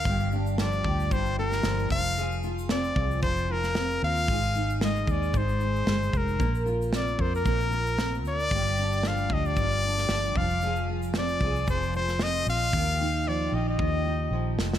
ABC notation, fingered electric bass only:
X:1
M:4/4
L:1/8
Q:"Swing 16ths" 1/4=114
K:Fdor
V:1 name="Fingered electric bass" clef=bass
G,,,3 D,, G,,,2 G,,, F,,,- | F,,,3 C,, F,,,3 E,, | A,,,3 E,, A,,,2 G,,, F,,, | B,,,3 F,, B,,,3 D,, |
G,,,3 D,, G,,,2 G,,, F,,,- | F,,,3 C,, F,,,3 B,,, | E,,3 B,,, E,,2 B,,, F,,, |]